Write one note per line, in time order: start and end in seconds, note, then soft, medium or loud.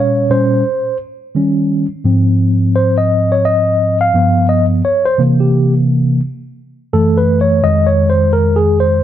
0.00 0.27 A#2 medium
0.00 0.27 G3 soft
0.00 0.28 C#4 medium
0.00 0.32 C#5 medium
0.30 0.62 A#2 medium
0.30 0.62 G3 soft
0.30 0.62 C#4 medium
0.30 0.97 C5 medium
1.35 1.85 D#3 soft
1.35 1.85 G3 soft
1.35 1.86 C#4 medium
2.04 4.10 G#2 medium
2.04 4.10 F3 soft
2.04 4.11 C4 medium
2.76 2.96 C5 medium
2.98 3.33 D#5 medium
3.32 3.44 C#5 medium
3.45 3.98 D#5 loud
4.01 4.46 F5 loud
4.14 4.80 G2 medium
4.14 4.81 F3 medium
4.14 4.81 B3 medium
4.49 4.65 D#5 medium
4.85 5.05 C#5 medium
5.06 5.21 C5 loud
5.18 6.19 C3 medium
5.18 6.20 E3 medium
5.18 6.20 A#3 medium
5.40 5.73 G4 medium
6.93 7.60 F#2 soft
6.93 7.60 E3 soft
6.93 7.60 A3 medium
6.93 7.17 A4 medium
7.17 7.39 B4 medium
7.41 7.65 C#5 medium
7.63 8.99 F2 medium
7.63 8.99 D#3 medium
7.63 8.99 G#3 medium
7.63 7.87 D#5 loud
7.86 8.08 C#5 loud
8.10 8.31 C5 loud
8.33 8.57 A#4 loud
8.56 8.78 G#4 medium
8.80 9.04 C5 medium